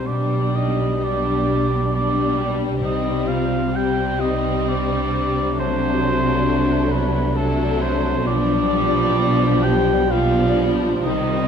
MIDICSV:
0, 0, Header, 1, 10, 480
1, 0, Start_track
1, 0, Tempo, 918836
1, 42, Time_signature, 3, 2, 24, 8
1, 2921, Tempo, 894188
1, 4361, Tempo, 927357
1, 6019, End_track
2, 0, Start_track
2, 0, Title_t, "Cor anglais"
2, 0, Program_c, 0, 69
2, 34, Note_on_c, 0, 74, 51
2, 289, Note_on_c, 0, 75, 53
2, 297, Note_off_c, 0, 74, 0
2, 542, Note_on_c, 0, 74, 59
2, 550, Note_off_c, 0, 75, 0
2, 1014, Note_off_c, 0, 74, 0
2, 1017, Note_on_c, 0, 74, 60
2, 1338, Note_off_c, 0, 74, 0
2, 1486, Note_on_c, 0, 75, 58
2, 1711, Note_on_c, 0, 77, 61
2, 1719, Note_off_c, 0, 75, 0
2, 1962, Note_on_c, 0, 79, 67
2, 1970, Note_off_c, 0, 77, 0
2, 2195, Note_on_c, 0, 75, 56
2, 2203, Note_off_c, 0, 79, 0
2, 2448, Note_on_c, 0, 74, 61
2, 2456, Note_off_c, 0, 75, 0
2, 2919, Note_off_c, 0, 74, 0
2, 2922, Note_on_c, 0, 72, 70
2, 3630, Note_on_c, 0, 71, 56
2, 3639, Note_off_c, 0, 72, 0
2, 3874, Note_on_c, 0, 69, 59
2, 3882, Note_off_c, 0, 71, 0
2, 4116, Note_on_c, 0, 72, 63
2, 4124, Note_off_c, 0, 69, 0
2, 4355, Note_off_c, 0, 72, 0
2, 4358, Note_on_c, 0, 74, 87
2, 5064, Note_on_c, 0, 79, 69
2, 5071, Note_off_c, 0, 74, 0
2, 5312, Note_on_c, 0, 77, 77
2, 5319, Note_off_c, 0, 79, 0
2, 5654, Note_off_c, 0, 77, 0
2, 5794, Note_on_c, 0, 75, 78
2, 6019, Note_off_c, 0, 75, 0
2, 6019, End_track
3, 0, Start_track
3, 0, Title_t, "French horn section"
3, 0, Program_c, 1, 60
3, 36, Note_on_c, 1, 62, 43
3, 282, Note_on_c, 1, 63, 42
3, 285, Note_off_c, 1, 62, 0
3, 512, Note_on_c, 1, 62, 48
3, 529, Note_off_c, 1, 63, 0
3, 989, Note_off_c, 1, 62, 0
3, 1005, Note_on_c, 1, 62, 44
3, 1460, Note_on_c, 1, 63, 51
3, 1465, Note_off_c, 1, 62, 0
3, 1704, Note_off_c, 1, 63, 0
3, 1709, Note_on_c, 1, 65, 46
3, 1938, Note_on_c, 1, 67, 52
3, 1952, Note_off_c, 1, 65, 0
3, 2188, Note_off_c, 1, 67, 0
3, 2192, Note_on_c, 1, 63, 51
3, 2437, Note_on_c, 1, 62, 48
3, 2439, Note_off_c, 1, 63, 0
3, 2918, Note_off_c, 1, 62, 0
3, 2930, Note_on_c, 1, 60, 58
3, 3613, Note_on_c, 1, 59, 54
3, 3637, Note_off_c, 1, 60, 0
3, 3859, Note_off_c, 1, 59, 0
3, 3859, Note_on_c, 1, 57, 54
3, 4104, Note_on_c, 1, 60, 55
3, 4109, Note_off_c, 1, 57, 0
3, 4341, Note_on_c, 1, 62, 70
3, 4354, Note_off_c, 1, 60, 0
3, 5055, Note_off_c, 1, 62, 0
3, 5069, Note_on_c, 1, 67, 70
3, 5303, Note_on_c, 1, 65, 68
3, 5310, Note_off_c, 1, 67, 0
3, 5790, Note_off_c, 1, 65, 0
3, 5800, Note_on_c, 1, 63, 70
3, 6019, Note_off_c, 1, 63, 0
3, 6019, End_track
4, 0, Start_track
4, 0, Title_t, "Harp"
4, 0, Program_c, 2, 46
4, 0, Note_on_c, 2, 48, 32
4, 0, Note_on_c, 2, 60, 27
4, 0, Note_on_c, 2, 63, 27
4, 0, Note_on_c, 2, 67, 31
4, 0, Note_on_c, 2, 72, 30
4, 44, Note_on_c, 2, 47, 38
4, 61, Note_off_c, 2, 60, 0
4, 62, Note_off_c, 2, 48, 0
4, 63, Note_off_c, 2, 63, 0
4, 64, Note_off_c, 2, 72, 0
4, 287, Note_on_c, 2, 55, 30
4, 523, Note_on_c, 2, 62, 30
4, 760, Note_off_c, 2, 67, 0
4, 766, Note_on_c, 2, 67, 30
4, 1000, Note_off_c, 2, 62, 0
4, 1007, Note_on_c, 2, 62, 31
4, 1241, Note_off_c, 2, 67, 0
4, 1248, Note_on_c, 2, 67, 35
4, 1474, Note_on_c, 2, 48, 42
4, 1493, Note_off_c, 2, 62, 0
4, 1495, Note_off_c, 2, 47, 0
4, 1715, Note_on_c, 2, 60, 31
4, 1949, Note_off_c, 2, 67, 0
4, 1955, Note_on_c, 2, 67, 33
4, 2187, Note_off_c, 2, 60, 0
4, 2194, Note_on_c, 2, 60, 37
4, 2324, Note_off_c, 2, 55, 0
4, 2441, Note_on_c, 2, 72, 38
4, 2674, Note_off_c, 2, 67, 0
4, 2680, Note_on_c, 2, 67, 39
4, 2909, Note_off_c, 2, 48, 0
4, 2915, Note_on_c, 2, 48, 47
4, 2937, Note_off_c, 2, 67, 0
4, 3151, Note_on_c, 2, 57, 38
4, 3379, Note_on_c, 2, 62, 40
4, 3618, Note_on_c, 2, 66, 39
4, 3863, Note_on_c, 2, 69, 45
4, 4094, Note_off_c, 2, 66, 0
4, 4100, Note_on_c, 2, 66, 42
4, 4267, Note_off_c, 2, 60, 0
4, 4349, Note_on_c, 2, 47, 48
4, 4371, Note_off_c, 2, 66, 0
4, 4374, Note_off_c, 2, 69, 0
4, 4376, Note_off_c, 2, 57, 0
4, 4377, Note_off_c, 2, 48, 0
4, 4379, Note_off_c, 2, 72, 0
4, 4581, Note_on_c, 2, 55, 40
4, 4827, Note_off_c, 2, 62, 0
4, 4833, Note_on_c, 2, 62, 42
4, 5071, Note_on_c, 2, 65, 46
4, 5310, Note_on_c, 2, 67, 46
4, 5544, Note_off_c, 2, 65, 0
4, 5550, Note_on_c, 2, 65, 45
4, 5791, Note_on_c, 2, 48, 53
4, 5810, Note_off_c, 2, 47, 0
4, 5813, Note_off_c, 2, 62, 0
4, 5814, Note_off_c, 2, 65, 0
4, 6019, Note_off_c, 2, 48, 0
4, 6019, Note_off_c, 2, 55, 0
4, 6019, Note_off_c, 2, 67, 0
4, 6019, End_track
5, 0, Start_track
5, 0, Title_t, "Violin section"
5, 0, Program_c, 3, 48
5, 42, Note_on_c, 3, 62, 33
5, 523, Note_off_c, 3, 62, 0
5, 532, Note_on_c, 3, 62, 38
5, 999, Note_off_c, 3, 62, 0
5, 1004, Note_on_c, 3, 62, 40
5, 1464, Note_off_c, 3, 62, 0
5, 1468, Note_on_c, 3, 60, 40
5, 1940, Note_off_c, 3, 60, 0
5, 1957, Note_on_c, 3, 60, 46
5, 2902, Note_off_c, 3, 60, 0
5, 2919, Note_on_c, 3, 62, 53
5, 3855, Note_off_c, 3, 62, 0
5, 3875, Note_on_c, 3, 62, 54
5, 4346, Note_off_c, 3, 62, 0
5, 4353, Note_on_c, 3, 62, 53
5, 5292, Note_off_c, 3, 62, 0
5, 5309, Note_on_c, 3, 62, 54
5, 5783, Note_off_c, 3, 62, 0
5, 5794, Note_on_c, 3, 60, 52
5, 6019, Note_off_c, 3, 60, 0
5, 6019, End_track
6, 0, Start_track
6, 0, Title_t, "Violin section"
6, 0, Program_c, 4, 48
6, 44, Note_on_c, 4, 55, 36
6, 523, Note_off_c, 4, 55, 0
6, 536, Note_on_c, 4, 55, 41
6, 998, Note_off_c, 4, 55, 0
6, 1005, Note_on_c, 4, 55, 44
6, 1464, Note_off_c, 4, 55, 0
6, 1473, Note_on_c, 4, 55, 41
6, 1942, Note_off_c, 4, 55, 0
6, 1960, Note_on_c, 4, 55, 50
6, 2904, Note_off_c, 4, 55, 0
6, 2932, Note_on_c, 4, 57, 53
6, 3860, Note_off_c, 4, 57, 0
6, 3866, Note_on_c, 4, 57, 53
6, 4346, Note_off_c, 4, 57, 0
6, 4355, Note_on_c, 4, 55, 59
6, 5305, Note_off_c, 4, 55, 0
6, 5312, Note_on_c, 4, 55, 57
6, 5785, Note_off_c, 4, 55, 0
6, 5798, Note_on_c, 4, 55, 59
6, 6019, Note_off_c, 4, 55, 0
6, 6019, End_track
7, 0, Start_track
7, 0, Title_t, "Viola section"
7, 0, Program_c, 5, 48
7, 36, Note_on_c, 5, 55, 40
7, 519, Note_off_c, 5, 55, 0
7, 530, Note_on_c, 5, 55, 41
7, 998, Note_off_c, 5, 55, 0
7, 1008, Note_on_c, 5, 55, 43
7, 1466, Note_off_c, 5, 55, 0
7, 1474, Note_on_c, 5, 55, 46
7, 1943, Note_off_c, 5, 55, 0
7, 1950, Note_on_c, 5, 55, 46
7, 2899, Note_off_c, 5, 55, 0
7, 2914, Note_on_c, 5, 54, 53
7, 3852, Note_off_c, 5, 54, 0
7, 3862, Note_on_c, 5, 54, 55
7, 4344, Note_off_c, 5, 54, 0
7, 4349, Note_on_c, 5, 53, 59
7, 5303, Note_off_c, 5, 53, 0
7, 5309, Note_on_c, 5, 53, 58
7, 5784, Note_off_c, 5, 53, 0
7, 5792, Note_on_c, 5, 51, 61
7, 6019, Note_off_c, 5, 51, 0
7, 6019, End_track
8, 0, Start_track
8, 0, Title_t, "Timpani"
8, 0, Program_c, 6, 47
8, 1468, Note_on_c, 6, 48, 42
8, 2171, Note_off_c, 6, 48, 0
8, 6019, End_track
9, 0, Start_track
9, 0, Title_t, "Cello section"
9, 0, Program_c, 7, 48
9, 32, Note_on_c, 7, 47, 42
9, 1450, Note_off_c, 7, 47, 0
9, 1476, Note_on_c, 7, 48, 46
9, 4339, Note_off_c, 7, 48, 0
9, 4352, Note_on_c, 7, 47, 60
9, 5771, Note_off_c, 7, 47, 0
9, 5788, Note_on_c, 7, 48, 58
9, 6019, Note_off_c, 7, 48, 0
9, 6019, End_track
10, 0, Start_track
10, 0, Title_t, "Double bass section"
10, 0, Program_c, 8, 48
10, 35, Note_on_c, 8, 35, 43
10, 1451, Note_off_c, 8, 35, 0
10, 1470, Note_on_c, 8, 36, 43
10, 4336, Note_off_c, 8, 36, 0
10, 4357, Note_on_c, 8, 35, 64
10, 5774, Note_off_c, 8, 35, 0
10, 5797, Note_on_c, 8, 36, 64
10, 6019, Note_off_c, 8, 36, 0
10, 6019, End_track
0, 0, End_of_file